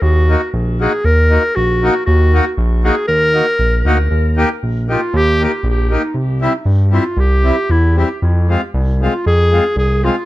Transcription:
<<
  \new Staff \with { instrumentName = "Clarinet" } { \time 2/4 \key ees \minor \tempo 4 = 117 ges'4 r8 aes'8 | bes'4 ges'4 | ges'4 r8 aes'8 | bes'4. r8 |
\key ees \major r4. f'8 | g'8 g'8 g'8 ees'8 | r4. f'8 | g'4 e'8 g'8 |
r4. f'8 | aes'4 aes'8 f'8 | }
  \new Staff \with { instrumentName = "Accordion" } { \time 2/4 \key ees \minor r8 <bes ees' ges'>8 r8 <bes ees' ges'>8 | r8 <bes ees' ges'>8 r8 <bes ees' ges'>8 | r8 <bes ees' ges'>8 r8 <bes ees' ges'>8 | r8 <bes ees' ges'>8 r8 <bes ees' ges'>8 |
\key ees \major r8 <bes ees' g'>8 r8 <bes ees' g'>8 | r8 <bes ees' g'>8 r8 <bes ees' g'>8 | r8 <g c' e'>8 r8 <g c' e'>8 | r8 <g c' e'>8 r8 <g c' e'>8 |
r8 <aes c' f'>8 r8 <aes c' f'>8 | r8 <aes c' f'>8 r8 <aes c' f'>8 | }
  \new Staff \with { instrumentName = "Analog synth bass" } { \clef bass \time 2/4 \key ees \minor ees,4 bes,,4 | ees,4 bes,,4 | ees,4 bes,,4 | ees,4 bes,,8 d,8 |
\key ees \major ees,4 bes,,4 | ees,4 bes,,4 | c,4 g,4 | c,4 e,4 |
f,4 c,4 | f,4 c,4 | }
>>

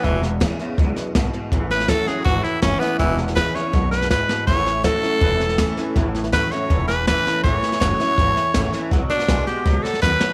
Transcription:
<<
  \new Staff \with { instrumentName = "Tenor saxophone" } { \time 4/4 \key a \lydian \tempo 4 = 162 e8 r2. r8 | r8 b'8 a'8 gis'8 fis'8 e'8 cis'8 b8 | e8 r8 b'8 cis''4 b'8 b'4 | cis''4 a'2. |
r4 b'8 cis''4 b'8 b'4 | cis''4 cis''2. | r8 d'4 g'4 a'8 b'4 | }
  \new Staff \with { instrumentName = "Steel-string acoustic guitar" } { \time 4/4 \key a \lydian << { r4 <e gis b e'>8 <b e'>8 r2 | r4 <e a cis' e'>8 <cis' e'>8 r4 <e a cis' e'>8 <cis' e'>8 | r4 <e gis b e'>8 <b e'>8 r2 | r4 <e a cis' e'>8 <cis' e'>8 r4 <e a cis' e'>8 <cis' e'>8 |
r4 <e a cis' e'>8 <cis' e'>8 r4 <e a cis' e'>4 | r4 <e a cis' e'>8 <cis' e'>8 r4 <e a cis' e'>8 <cis' e'>8 | r4 <dis a b fis'>8 <b fis'>8 r2 | } \\ { e,2 fis,4 gis,4 | a,2 e,2 | e,2 fis,4 gis,4 | a,2 e,2 |
a,2 e,2 | a,2 e,2 | b,2 gis,4 fis,4 | } >> }
  \new Staff \with { instrumentName = "Clean electric guitar" } { \clef bass \time 4/4 \key a \lydian <e, b,>4 <e, cis>8 <e, cis>8 <e, b,>4 <e, b,>8 <e, b,>8 | <a, e>4 <a, fis>8 <a, fis>8 <a, e>4 <a, e>8 <a, e>8 | <e, b,>4 <e, cis>8 <e, cis>8 <e, b,>4 e,8 <e, b,>8 | <a, e>4 <a, fis>8 <a, fis>8 <a, e>4 <a, e>8 <a, e>8 |
<a, e>4 <a, fis>8 <a, fis>8 <a, e>4 <a, e>8 <a, e>8 | <a, e>4 <a, fis>8 <a, fis>8 <a, e>4 <a, e>8 <a, e>8 | <b, fis>4 <b, gis>8 <b, gis>8 <b, fis>4 <b, fis>8 <b, fis>8 | }
  \new Staff \with { instrumentName = "Upright bass" } { \clef bass \time 4/4 \key a \lydian e,,4. r8 cis,8 r8 b,,8 r8 | a,,4. r8 gis,,8 r8 fis,,8 r8 | e,,4. r8 b,,4. r8 | a,,4. r8 e,,4. r8 |
a,,4. r8 e,,4. r8 | a,,8 r8 fis,,8 r8 gis,,8 r8 a,,8 r8 | b,,8 r8 b,,8 r8 cis,8 r8 dis,8 r8 | }
  \new DrumStaff \with { instrumentName = "Drums" } \drummode { \time 4/4 <bd sn>8 sn8 <hhp bd sn>8 sn8 <bd sn>8 sn8 <hhp bd sn>8 sn8 | <bd sn>8 sn16 sn16 <hhp bd sn>8 sn8 <bd sn>8 sn8 <hhp bd sn>8 sn8 | <bd sn>8 sn16 sn16 <hhp bd sn>8 sn8 <bd sn>8 sn16 sn16 <hhp bd sn>8 sn8 | <bd sn>8 sn8 <hhp bd sn>8 sn8 <bd sn>8 sn16 sn16 <hhp bd sn>8 sn8 |
<bd sn>8 sn16 sn16 <hhp bd sn>8 sn8 <bd sn>8 sn8 <hhp bd sn>8 sn8 | <bd sn>8 sn16 sn16 <hhp bd sn>8 sn8 <bd sn>8 sn8 <hhp bd sn>8 sn8 | <bd sn>8 sn16 sn16 <hhp bd sn>8 sn8 <bd sn>8 sn16 sn16 <hhp bd sn>8 sn8 | }
>>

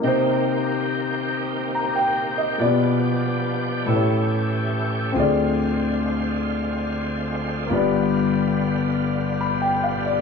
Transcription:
<<
  \new Staff \with { instrumentName = "Grand piano" } { \time 6/8 \key c \minor \tempo 4. = 47 << { r2 bes''16 g''8 ees''16~ | ees''16 r2 r8. | r2. | r2 b''16 g''16 f''16 d''16 | } \\ { <bes ees' g' c''>2. | <bes b f' g' d''>4. <a e' g' b' cis''>4. | <c' f' aes' d''>2. | <bes b f' g' d''>2. | } >> }
  \new Staff \with { instrumentName = "Grand piano" } { \clef bass \time 6/8 \key c \minor c4. r4. | b,4. a,4. | d4. r4. | g,4. r4. | }
  \new Staff \with { instrumentName = "Tonewheel organ" } { \time 6/8 \key c \minor g'2.~ | g'2. | f'2.~ | f'2. | }
  \new Staff \with { instrumentName = "Tonewheel organ" } { \time 6/8 \key c \minor << { <bes c'>2. | <b, b d'>4. <a cis'>4. | <aes c'>2. | <g b>2. | } \\ { ees2. | f4. e4. | d2.~ | d2. | } >> }
  \new Staff \with { instrumentName = "Fingered electric bass" } { \clef bass \time 6/8 \key c \minor r2. | r2. | d,2. | g,,2. | }
>>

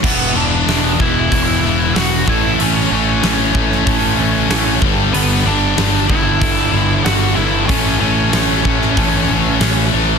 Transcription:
<<
  \new Staff \with { instrumentName = "Lead electric guitar" } { \time 4/4 \key a \major \tempo 4 = 94 <b b'>8 <d' d''>4 <e' e''>4. <fis' fis''>8 <e' e''>8 | <cis' cis''>8 <cis' cis''>2. r8 | <b b'>8 <d' d''>4 <e' e''>4. <fis' fis''>8 <e' e''>8 | <cis' cis''>8 <cis' cis''>2. r8 | }
  \new Staff \with { instrumentName = "Distorted electric guitar" } { \clef bass \time 4/4 \key a \major <e, b, e>2.~ <e, b, e>8 <a, e a>8~ | <a, e a>2. <a, e a>8 <g, d g>8~ | <g, d g>2. <g, d g>8 r8 | <a, e a>2.~ <a, e a>8 <a, e a>8 | }
  \new Staff \with { instrumentName = "Distorted electric guitar" } { \clef bass \time 4/4 \key a \major <e, b, e>8 <e, b, e>8 <e, b, e>8 <e, b, e>8 <e, b, e>8 <e, b, e>8 <e, b, e>8 <a, e a>8 | <a, e a>8 <a, e a>8 <a, e a>8 <a, e a>8 <a, e a>8 <a, e a>8 <a, e a>8 <g, d g>8 | <g, d g>8 <g, d g>8 <g, d g>8 <g, d g>8 <g, d g>8 <g, d g>8 <g, d g>8 <g, d g>8 | <a, e a>8 <a, e a>8 <a, e a>8 <a, e a>8 <a, e a>8 <a, e a>8 <a, e a>8 <a, e a>8 | }
  \new Staff \with { instrumentName = "Distorted electric guitar" } { \clef bass \time 4/4 \key a \major <e, b, e>8 <e, b, e>8 <e, b, e>8 <e, b, e>8 <e, b, e>8 <e, b, e>8 <e, b, e>8 <a, e a>8 | <a, e a>8 <a, e a>8 <a, e a>8 <a, e a>8 <a, e a>8 <a, e a>8 <a, e a>8 <g, d g>8 | <g, d g>8 <g, d g>8 <g, d g>8 <g, d g>8 <g, d g>8 <g, d g>8 <g, d g>8 <g, d g>8 | <a, e a>8 <a, e a>8 <a, e a>8 <a, e a>8 <a, e a>8 <a, e a>8 <a, e a>8 <a, e a>8 | }
  \new Staff \with { instrumentName = "Picked electric bass" } { \clef bass \time 4/4 \key a \major e,,8 e,,8 e,,8 e,,8 e,,8 e,,8 e,,8 a,,8 | a,,8 a,,8 a,,8 a,,8 a,,8 a,,8 a,,8 g,,8 | g,,8 g,,8 g,,8 g,,8 g,,8 g,,8 g,,8 g,,8 | a,,8 a,,8 a,,8 a,,8 a,,8 a,,8 a,,8 a,,8 | }
  \new DrumStaff \with { instrumentName = "Drums" } \drummode { \time 4/4 <cymc bd>4 <hho sn>8 bd8 <hho bd>4 <hho sn>8 bd8 | hho4 <hho sn>8 bd16 sn16 <hho bd>4 <hho sn>8 bd8 | hho4 <hho sn>8 bd8 <hho bd>4 <hho sn>4 | <hho bd>4 <hho sn>8 bd16 sn16 <hho bd>4 <hho sn>4 | }
>>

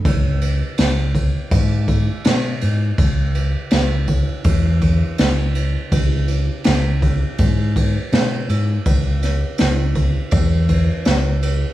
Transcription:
<<
  \new Staff \with { instrumentName = "Fingered electric bass" } { \clef bass \time 4/4 \key cis \minor \tempo 4 = 82 cis,4 cis,4 gis,4 b,8 gis,8 | cis,4 cis,4 e,4 cis,4 | cis,4 cis,4 gis,4 b,8 gis,8 | cis,4 cis,4 e,4 cis,4 | }
  \new DrumStaff \with { instrumentName = "Drums" } \drummode { \time 4/4 <bd cymr>8 cymr8 <cymr sn>8 <bd cymr>8 <bd cymr>8 <bd cymr>8 <cymr sn>8 cymr8 | <bd cymr>8 cymr8 <cymr sn>8 <bd cymr>8 <bd cymr>8 <bd cymr>8 <cymr sn>8 cymr8 | <bd cymr>8 cymr8 <cymr sn>8 <bd cymr>8 <bd cymr>8 <bd cymr>8 <cymr sn>8 cymr8 | <bd cymr>8 <cymr sn>8 <cymr sn>8 <bd cymr>8 <bd cymr>8 <bd cymr>8 <cymr sn>8 cymr8 | }
>>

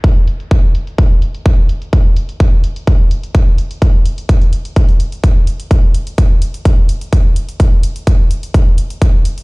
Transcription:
\new DrumStaff \with { instrumentName = "Drums" } \drummode { \time 4/4 \tempo 4 = 127 <hh bd>8 hh16 hh16 <hh bd>8 hh16 hh16 <hh bd>8 hh16 hh16 <hh bd>8 hh16 hh16 | <hh bd>8 hh16 hh16 <hh bd>8 hh16 hh16 <hh bd>8 hh16 hh16 <hh bd>8 hh16 hh16 | <hh bd>8 hh16 hh16 <hh bd>16 hh16 hh16 hh16 <hh bd>16 hh16 hh16 hh16 <hh bd>8 hh16 hh16 | <hh bd>8 hh16 hh16 <hh bd>8 hh16 hh16 <hh bd>8 hh16 hh16 <hh bd>8 hh16 hh16 |
<hh bd>8 hh16 hh16 <hh bd>8 hh16 hh16 <hh bd>8 hh16 hh16 <hh bd>8 hh16 hh16 | }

